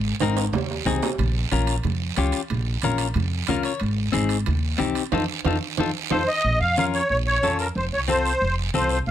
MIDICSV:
0, 0, Header, 1, 5, 480
1, 0, Start_track
1, 0, Tempo, 328407
1, 1736, Time_signature, 4, 2, 24, 8
1, 13314, End_track
2, 0, Start_track
2, 0, Title_t, "Accordion"
2, 0, Program_c, 0, 21
2, 8929, Note_on_c, 0, 72, 90
2, 9179, Note_off_c, 0, 72, 0
2, 9180, Note_on_c, 0, 75, 105
2, 9624, Note_off_c, 0, 75, 0
2, 9656, Note_on_c, 0, 77, 95
2, 9879, Note_off_c, 0, 77, 0
2, 9913, Note_on_c, 0, 77, 96
2, 10017, Note_off_c, 0, 77, 0
2, 10140, Note_on_c, 0, 73, 89
2, 10346, Note_off_c, 0, 73, 0
2, 10368, Note_on_c, 0, 73, 102
2, 10477, Note_off_c, 0, 73, 0
2, 10619, Note_on_c, 0, 73, 92
2, 11064, Note_off_c, 0, 73, 0
2, 11111, Note_on_c, 0, 70, 81
2, 11216, Note_off_c, 0, 70, 0
2, 11361, Note_on_c, 0, 72, 88
2, 11463, Note_off_c, 0, 72, 0
2, 11598, Note_on_c, 0, 73, 94
2, 11701, Note_off_c, 0, 73, 0
2, 11831, Note_on_c, 0, 72, 97
2, 12494, Note_off_c, 0, 72, 0
2, 12805, Note_on_c, 0, 72, 92
2, 13015, Note_off_c, 0, 72, 0
2, 13044, Note_on_c, 0, 72, 85
2, 13146, Note_off_c, 0, 72, 0
2, 13314, End_track
3, 0, Start_track
3, 0, Title_t, "Clean electric guitar"
3, 0, Program_c, 1, 27
3, 314, Note_on_c, 1, 60, 77
3, 323, Note_on_c, 1, 63, 68
3, 333, Note_on_c, 1, 70, 86
3, 641, Note_off_c, 1, 60, 0
3, 646, Note_off_c, 1, 63, 0
3, 651, Note_off_c, 1, 70, 0
3, 1259, Note_on_c, 1, 60, 71
3, 1263, Note_on_c, 1, 63, 59
3, 1269, Note_on_c, 1, 68, 85
3, 1594, Note_off_c, 1, 60, 0
3, 1594, Note_off_c, 1, 63, 0
3, 1598, Note_off_c, 1, 68, 0
3, 2219, Note_on_c, 1, 61, 70
3, 2229, Note_on_c, 1, 65, 65
3, 2240, Note_on_c, 1, 70, 76
3, 2555, Note_off_c, 1, 61, 0
3, 2556, Note_off_c, 1, 65, 0
3, 2558, Note_off_c, 1, 70, 0
3, 3180, Note_on_c, 1, 61, 78
3, 3188, Note_on_c, 1, 67, 82
3, 3190, Note_on_c, 1, 65, 62
3, 3514, Note_off_c, 1, 61, 0
3, 3515, Note_off_c, 1, 65, 0
3, 3517, Note_off_c, 1, 67, 0
3, 4149, Note_on_c, 1, 61, 77
3, 4157, Note_on_c, 1, 65, 72
3, 4157, Note_on_c, 1, 70, 91
3, 4478, Note_off_c, 1, 61, 0
3, 4480, Note_off_c, 1, 65, 0
3, 4482, Note_off_c, 1, 70, 0
3, 5094, Note_on_c, 1, 61, 74
3, 5100, Note_on_c, 1, 65, 69
3, 5112, Note_on_c, 1, 70, 78
3, 5120, Note_on_c, 1, 77, 63
3, 5325, Note_off_c, 1, 77, 0
3, 5337, Note_on_c, 1, 73, 68
3, 5430, Note_off_c, 1, 61, 0
3, 5435, Note_off_c, 1, 65, 0
3, 5437, Note_off_c, 1, 70, 0
3, 5559, Note_off_c, 1, 73, 0
3, 6027, Note_on_c, 1, 60, 78
3, 6039, Note_on_c, 1, 63, 71
3, 6046, Note_on_c, 1, 68, 83
3, 6376, Note_off_c, 1, 60, 0
3, 6383, Note_off_c, 1, 63, 0
3, 6384, Note_off_c, 1, 68, 0
3, 6990, Note_on_c, 1, 60, 74
3, 6997, Note_on_c, 1, 63, 69
3, 7010, Note_on_c, 1, 67, 89
3, 7338, Note_off_c, 1, 60, 0
3, 7341, Note_off_c, 1, 63, 0
3, 7348, Note_off_c, 1, 67, 0
3, 7496, Note_on_c, 1, 63, 96
3, 7500, Note_on_c, 1, 65, 81
3, 7513, Note_on_c, 1, 69, 84
3, 7650, Note_off_c, 1, 65, 0
3, 7652, Note_off_c, 1, 63, 0
3, 7653, Note_off_c, 1, 69, 0
3, 7983, Note_on_c, 1, 65, 94
3, 7993, Note_on_c, 1, 63, 95
3, 7998, Note_on_c, 1, 69, 78
3, 8133, Note_off_c, 1, 65, 0
3, 8139, Note_off_c, 1, 69, 0
3, 8140, Note_off_c, 1, 63, 0
3, 8470, Note_on_c, 1, 63, 89
3, 8481, Note_on_c, 1, 65, 91
3, 8481, Note_on_c, 1, 69, 76
3, 8619, Note_off_c, 1, 63, 0
3, 8619, Note_off_c, 1, 69, 0
3, 8623, Note_off_c, 1, 65, 0
3, 8933, Note_on_c, 1, 63, 85
3, 8943, Note_on_c, 1, 65, 84
3, 8950, Note_on_c, 1, 69, 77
3, 9089, Note_off_c, 1, 63, 0
3, 9091, Note_off_c, 1, 65, 0
3, 9092, Note_off_c, 1, 69, 0
3, 9906, Note_on_c, 1, 61, 68
3, 9913, Note_on_c, 1, 65, 59
3, 9925, Note_on_c, 1, 70, 65
3, 10237, Note_off_c, 1, 61, 0
3, 10241, Note_off_c, 1, 65, 0
3, 10243, Note_off_c, 1, 70, 0
3, 10863, Note_on_c, 1, 61, 61
3, 10869, Note_on_c, 1, 65, 55
3, 10872, Note_on_c, 1, 69, 71
3, 11196, Note_off_c, 1, 61, 0
3, 11197, Note_off_c, 1, 65, 0
3, 11200, Note_off_c, 1, 69, 0
3, 11810, Note_on_c, 1, 60, 68
3, 11820, Note_on_c, 1, 65, 59
3, 11833, Note_on_c, 1, 69, 74
3, 12149, Note_off_c, 1, 60, 0
3, 12154, Note_off_c, 1, 65, 0
3, 12161, Note_off_c, 1, 69, 0
3, 12776, Note_on_c, 1, 60, 67
3, 12787, Note_on_c, 1, 65, 55
3, 12787, Note_on_c, 1, 69, 72
3, 13113, Note_off_c, 1, 60, 0
3, 13115, Note_off_c, 1, 65, 0
3, 13118, Note_off_c, 1, 69, 0
3, 13314, End_track
4, 0, Start_track
4, 0, Title_t, "Upright bass"
4, 0, Program_c, 2, 32
4, 0, Note_on_c, 2, 32, 94
4, 201, Note_off_c, 2, 32, 0
4, 294, Note_on_c, 2, 32, 84
4, 679, Note_off_c, 2, 32, 0
4, 769, Note_on_c, 2, 39, 85
4, 1156, Note_off_c, 2, 39, 0
4, 1243, Note_on_c, 2, 36, 83
4, 1440, Note_off_c, 2, 36, 0
4, 1730, Note_on_c, 2, 34, 85
4, 2116, Note_off_c, 2, 34, 0
4, 2217, Note_on_c, 2, 34, 80
4, 2600, Note_off_c, 2, 34, 0
4, 2693, Note_on_c, 2, 41, 87
4, 3078, Note_off_c, 2, 41, 0
4, 3176, Note_on_c, 2, 37, 84
4, 3367, Note_off_c, 2, 37, 0
4, 3657, Note_on_c, 2, 34, 100
4, 4040, Note_off_c, 2, 34, 0
4, 4134, Note_on_c, 2, 34, 78
4, 4518, Note_off_c, 2, 34, 0
4, 4606, Note_on_c, 2, 41, 87
4, 4993, Note_off_c, 2, 41, 0
4, 5085, Note_on_c, 2, 37, 83
4, 5281, Note_off_c, 2, 37, 0
4, 5567, Note_on_c, 2, 32, 97
4, 5954, Note_off_c, 2, 32, 0
4, 6057, Note_on_c, 2, 32, 88
4, 6440, Note_off_c, 2, 32, 0
4, 6543, Note_on_c, 2, 39, 85
4, 6923, Note_off_c, 2, 39, 0
4, 7016, Note_on_c, 2, 36, 88
4, 7207, Note_off_c, 2, 36, 0
4, 7490, Note_on_c, 2, 41, 86
4, 7670, Note_off_c, 2, 41, 0
4, 7969, Note_on_c, 2, 41, 86
4, 8150, Note_off_c, 2, 41, 0
4, 8457, Note_on_c, 2, 41, 84
4, 8634, Note_off_c, 2, 41, 0
4, 8931, Note_on_c, 2, 41, 91
4, 9111, Note_off_c, 2, 41, 0
4, 9417, Note_on_c, 2, 34, 89
4, 9608, Note_off_c, 2, 34, 0
4, 9657, Note_on_c, 2, 41, 77
4, 10232, Note_off_c, 2, 41, 0
4, 10378, Note_on_c, 2, 34, 86
4, 10761, Note_off_c, 2, 34, 0
4, 10856, Note_on_c, 2, 41, 79
4, 11240, Note_off_c, 2, 41, 0
4, 11335, Note_on_c, 2, 29, 93
4, 11528, Note_off_c, 2, 29, 0
4, 11589, Note_on_c, 2, 36, 80
4, 12160, Note_off_c, 2, 36, 0
4, 12297, Note_on_c, 2, 29, 87
4, 12681, Note_off_c, 2, 29, 0
4, 12780, Note_on_c, 2, 36, 87
4, 13163, Note_off_c, 2, 36, 0
4, 13257, Note_on_c, 2, 34, 92
4, 13314, Note_off_c, 2, 34, 0
4, 13314, End_track
5, 0, Start_track
5, 0, Title_t, "Drums"
5, 287, Note_on_c, 9, 73, 64
5, 299, Note_on_c, 9, 65, 90
5, 303, Note_on_c, 9, 63, 81
5, 433, Note_off_c, 9, 73, 0
5, 445, Note_off_c, 9, 65, 0
5, 449, Note_off_c, 9, 63, 0
5, 536, Note_on_c, 9, 65, 82
5, 539, Note_on_c, 9, 73, 69
5, 682, Note_off_c, 9, 65, 0
5, 685, Note_off_c, 9, 73, 0
5, 773, Note_on_c, 9, 74, 70
5, 780, Note_on_c, 9, 66, 91
5, 788, Note_on_c, 9, 63, 32
5, 788, Note_on_c, 9, 64, 76
5, 919, Note_off_c, 9, 74, 0
5, 927, Note_off_c, 9, 66, 0
5, 934, Note_off_c, 9, 63, 0
5, 934, Note_off_c, 9, 64, 0
5, 1036, Note_on_c, 9, 66, 60
5, 1182, Note_off_c, 9, 66, 0
5, 1260, Note_on_c, 9, 73, 66
5, 1261, Note_on_c, 9, 63, 74
5, 1261, Note_on_c, 9, 64, 66
5, 1267, Note_on_c, 9, 66, 69
5, 1406, Note_off_c, 9, 73, 0
5, 1407, Note_off_c, 9, 63, 0
5, 1407, Note_off_c, 9, 64, 0
5, 1413, Note_off_c, 9, 66, 0
5, 1497, Note_on_c, 9, 73, 67
5, 1504, Note_on_c, 9, 66, 101
5, 1643, Note_off_c, 9, 73, 0
5, 1650, Note_off_c, 9, 66, 0
5, 1730, Note_on_c, 9, 74, 62
5, 1741, Note_on_c, 9, 65, 69
5, 1747, Note_on_c, 9, 63, 31
5, 1747, Note_on_c, 9, 64, 63
5, 1876, Note_off_c, 9, 74, 0
5, 1888, Note_off_c, 9, 65, 0
5, 1894, Note_off_c, 9, 63, 0
5, 1894, Note_off_c, 9, 64, 0
5, 2214, Note_on_c, 9, 65, 63
5, 2214, Note_on_c, 9, 73, 66
5, 2226, Note_on_c, 9, 63, 82
5, 2360, Note_off_c, 9, 65, 0
5, 2360, Note_off_c, 9, 73, 0
5, 2372, Note_off_c, 9, 63, 0
5, 2444, Note_on_c, 9, 65, 68
5, 2450, Note_on_c, 9, 73, 72
5, 2590, Note_off_c, 9, 65, 0
5, 2596, Note_off_c, 9, 73, 0
5, 2682, Note_on_c, 9, 65, 63
5, 2693, Note_on_c, 9, 74, 72
5, 2704, Note_on_c, 9, 63, 30
5, 2704, Note_on_c, 9, 64, 74
5, 2828, Note_off_c, 9, 65, 0
5, 2839, Note_off_c, 9, 74, 0
5, 2850, Note_off_c, 9, 63, 0
5, 2850, Note_off_c, 9, 64, 0
5, 3163, Note_on_c, 9, 65, 66
5, 3163, Note_on_c, 9, 73, 65
5, 3180, Note_on_c, 9, 63, 80
5, 3309, Note_off_c, 9, 65, 0
5, 3309, Note_off_c, 9, 73, 0
5, 3326, Note_off_c, 9, 63, 0
5, 3394, Note_on_c, 9, 73, 65
5, 3400, Note_on_c, 9, 65, 64
5, 3540, Note_off_c, 9, 73, 0
5, 3546, Note_off_c, 9, 65, 0
5, 3631, Note_on_c, 9, 74, 61
5, 3655, Note_on_c, 9, 65, 63
5, 3668, Note_on_c, 9, 63, 34
5, 3668, Note_on_c, 9, 64, 63
5, 3777, Note_off_c, 9, 74, 0
5, 3801, Note_off_c, 9, 65, 0
5, 3814, Note_off_c, 9, 63, 0
5, 3814, Note_off_c, 9, 64, 0
5, 4116, Note_on_c, 9, 73, 70
5, 4121, Note_on_c, 9, 65, 62
5, 4141, Note_on_c, 9, 63, 83
5, 4263, Note_off_c, 9, 73, 0
5, 4267, Note_off_c, 9, 65, 0
5, 4287, Note_off_c, 9, 63, 0
5, 4357, Note_on_c, 9, 73, 75
5, 4359, Note_on_c, 9, 65, 67
5, 4503, Note_off_c, 9, 73, 0
5, 4505, Note_off_c, 9, 65, 0
5, 4591, Note_on_c, 9, 65, 63
5, 4596, Note_on_c, 9, 74, 70
5, 4619, Note_on_c, 9, 63, 31
5, 4619, Note_on_c, 9, 64, 76
5, 4737, Note_off_c, 9, 65, 0
5, 4742, Note_off_c, 9, 74, 0
5, 4765, Note_off_c, 9, 63, 0
5, 4765, Note_off_c, 9, 64, 0
5, 5069, Note_on_c, 9, 65, 68
5, 5075, Note_on_c, 9, 73, 68
5, 5099, Note_on_c, 9, 63, 78
5, 5099, Note_on_c, 9, 64, 65
5, 5215, Note_off_c, 9, 65, 0
5, 5221, Note_off_c, 9, 73, 0
5, 5245, Note_off_c, 9, 63, 0
5, 5245, Note_off_c, 9, 64, 0
5, 5311, Note_on_c, 9, 65, 70
5, 5329, Note_on_c, 9, 73, 64
5, 5457, Note_off_c, 9, 65, 0
5, 5475, Note_off_c, 9, 73, 0
5, 5548, Note_on_c, 9, 65, 63
5, 5563, Note_on_c, 9, 74, 65
5, 5582, Note_on_c, 9, 63, 32
5, 5695, Note_off_c, 9, 65, 0
5, 5709, Note_off_c, 9, 74, 0
5, 5728, Note_off_c, 9, 63, 0
5, 6041, Note_on_c, 9, 65, 61
5, 6048, Note_on_c, 9, 73, 68
5, 6053, Note_on_c, 9, 63, 84
5, 6187, Note_off_c, 9, 65, 0
5, 6194, Note_off_c, 9, 73, 0
5, 6199, Note_off_c, 9, 63, 0
5, 6271, Note_on_c, 9, 65, 66
5, 6286, Note_on_c, 9, 73, 68
5, 6418, Note_off_c, 9, 65, 0
5, 6432, Note_off_c, 9, 73, 0
5, 6522, Note_on_c, 9, 65, 67
5, 6526, Note_on_c, 9, 74, 68
5, 6534, Note_on_c, 9, 63, 33
5, 6534, Note_on_c, 9, 64, 72
5, 6668, Note_off_c, 9, 65, 0
5, 6672, Note_off_c, 9, 74, 0
5, 6680, Note_off_c, 9, 63, 0
5, 6680, Note_off_c, 9, 64, 0
5, 6996, Note_on_c, 9, 65, 66
5, 7011, Note_on_c, 9, 73, 64
5, 7020, Note_on_c, 9, 63, 77
5, 7142, Note_off_c, 9, 65, 0
5, 7158, Note_off_c, 9, 73, 0
5, 7166, Note_off_c, 9, 63, 0
5, 7240, Note_on_c, 9, 65, 70
5, 7252, Note_on_c, 9, 73, 67
5, 7386, Note_off_c, 9, 65, 0
5, 7399, Note_off_c, 9, 73, 0
5, 7482, Note_on_c, 9, 65, 89
5, 7485, Note_on_c, 9, 74, 87
5, 7491, Note_on_c, 9, 63, 95
5, 7628, Note_off_c, 9, 65, 0
5, 7631, Note_off_c, 9, 74, 0
5, 7637, Note_off_c, 9, 63, 0
5, 7960, Note_on_c, 9, 65, 86
5, 7966, Note_on_c, 9, 74, 94
5, 7973, Note_on_c, 9, 63, 105
5, 8106, Note_off_c, 9, 65, 0
5, 8112, Note_off_c, 9, 74, 0
5, 8119, Note_off_c, 9, 63, 0
5, 8442, Note_on_c, 9, 65, 92
5, 8447, Note_on_c, 9, 74, 97
5, 8451, Note_on_c, 9, 63, 95
5, 8588, Note_off_c, 9, 65, 0
5, 8594, Note_off_c, 9, 74, 0
5, 8597, Note_off_c, 9, 63, 0
5, 8922, Note_on_c, 9, 74, 94
5, 8926, Note_on_c, 9, 65, 89
5, 8927, Note_on_c, 9, 63, 89
5, 9069, Note_off_c, 9, 74, 0
5, 9072, Note_off_c, 9, 65, 0
5, 9074, Note_off_c, 9, 63, 0
5, 9424, Note_on_c, 9, 63, 31
5, 9570, Note_off_c, 9, 63, 0
5, 9885, Note_on_c, 9, 73, 66
5, 9907, Note_on_c, 9, 63, 80
5, 10031, Note_off_c, 9, 73, 0
5, 10054, Note_off_c, 9, 63, 0
5, 10140, Note_on_c, 9, 73, 64
5, 10286, Note_off_c, 9, 73, 0
5, 10368, Note_on_c, 9, 74, 66
5, 10389, Note_on_c, 9, 63, 30
5, 10514, Note_off_c, 9, 74, 0
5, 10535, Note_off_c, 9, 63, 0
5, 10859, Note_on_c, 9, 63, 74
5, 10862, Note_on_c, 9, 73, 62
5, 11006, Note_off_c, 9, 63, 0
5, 11008, Note_off_c, 9, 73, 0
5, 11091, Note_on_c, 9, 73, 66
5, 11237, Note_off_c, 9, 73, 0
5, 11331, Note_on_c, 9, 74, 66
5, 11342, Note_on_c, 9, 63, 30
5, 11477, Note_off_c, 9, 74, 0
5, 11488, Note_off_c, 9, 63, 0
5, 11813, Note_on_c, 9, 73, 66
5, 11815, Note_on_c, 9, 63, 79
5, 11959, Note_off_c, 9, 73, 0
5, 11961, Note_off_c, 9, 63, 0
5, 12066, Note_on_c, 9, 73, 66
5, 12212, Note_off_c, 9, 73, 0
5, 12300, Note_on_c, 9, 63, 33
5, 12306, Note_on_c, 9, 74, 66
5, 12446, Note_off_c, 9, 63, 0
5, 12452, Note_off_c, 9, 74, 0
5, 12773, Note_on_c, 9, 73, 65
5, 12777, Note_on_c, 9, 63, 77
5, 12919, Note_off_c, 9, 73, 0
5, 12923, Note_off_c, 9, 63, 0
5, 12999, Note_on_c, 9, 73, 65
5, 13146, Note_off_c, 9, 73, 0
5, 13246, Note_on_c, 9, 74, 65
5, 13269, Note_on_c, 9, 63, 33
5, 13314, Note_off_c, 9, 63, 0
5, 13314, Note_off_c, 9, 74, 0
5, 13314, End_track
0, 0, End_of_file